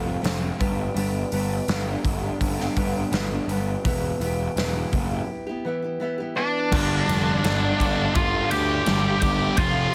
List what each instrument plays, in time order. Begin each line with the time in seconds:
Already playing: picked electric bass F1, steel-string acoustic guitar F3
0.06 steel-string acoustic guitar A3 C4 F4
0.22 picked electric bass F1, steel-string acoustic guitar F3 A3 C4 F4, snare, open hi-hat
0.41 steel-string acoustic guitar A3 C4 F4
0.59 picked electric bass G1, steel-string acoustic guitar G3 B3 D4 G4, kick, open hi-hat
0.94 picked electric bass G1, steel-string acoustic guitar G3 B3 D4 G4, open hi-hat
1.31 picked electric bass G1, steel-string acoustic guitar G3 B3 D4 G4, open hi-hat
1.68 picked electric bass G1, steel-string acoustic guitar G3 B3 D4 G4, snare, open hi-hat
1.85 steel-string acoustic guitar B3 D4 G4
2.04 picked electric bass G1, muted steel-string acoustic guitar stroke, kick, open hi-hat
2.22 steel-string acoustic guitar D4 G4
2.26 steel-string acoustic guitar B3
2.41 picked electric bass G1, kick, open hi-hat
2.58 steel-string acoustic guitar B3 D4 G4, snare
2.76 picked electric bass G1, steel-string acoustic guitar G3 B3 D4, kick, open hi-hat
2.80 steel-string acoustic guitar G4
2.94 steel-string acoustic guitar B3 D4 G4
3.11 picked electric bass G1, steel-string acoustic guitar G3 B3 D4, snare, open hi-hat
3.17 steel-string acoustic guitar G4
3.32 steel-string acoustic guitar B3 D4 G4
3.47 picked electric bass G1, steel-string acoustic guitar G3 B3, open hi-hat
3.52 steel-string acoustic guitar D4 G4
3.84 picked electric bass E1, steel-string acoustic guitar E3 B3 E4 G4, kick, open hi-hat
4.20 picked electric bass E1, steel-string acoustic guitar E3 B3 E4, open hi-hat
4.24 steel-string acoustic guitar G4
4.56 picked electric bass E1, steel-string acoustic guitar E3 B3 E4, snare, open hi-hat
4.60 steel-string acoustic guitar G4
4.74 steel-string acoustic guitar B3 E4 G4
4.92 picked electric bass F#1, muted steel-string acoustic guitar stroke, kick, open hi-hat
5.11 steel-string acoustic guitar B3 E4 G4
5.47 steel-string acoustic guitar B3 E4 G4
5.65 steel-string acoustic guitar E3 B3 E4 G4
5.82 steel-string acoustic guitar B3 E4 G4
6.00 steel-string acoustic guitar E3 B3 E4 G4
6.18 steel-string acoustic guitar B3 E4 G4
6.35 steel-string acoustic guitar E3 B3 E4 G4, lead electric guitar D4 D5
6.72 picked electric bass G1, distorted electric guitar G2 D3 G3, kick, crash
7.08 picked electric bass F1, snare, ride
7.43 picked electric bass G1, distorted electric guitar G2 D3 G3, snare, ride
7.79 picked electric bass G1, distorted electric guitar G2 D3 G3, kick, ride
8.14 picked electric bass G1, distorted electric guitar G2 D3 G3, lead electric guitar F4 F5, kick, ride
8.50 picked electric bass D2, lead electric guitar G4 G5, ride
8.86 picked electric bass G1, distorted electric guitar G2 D3 G3, snare, ride
9.21 picked electric bass G1, distorted electric guitar G2 D3 G3, lead electric guitar G4 G5, kick, ride
9.57 picked electric bass F1, distorted electric guitar F2 C3 F3, lead electric guitar F4 F5, kick, ride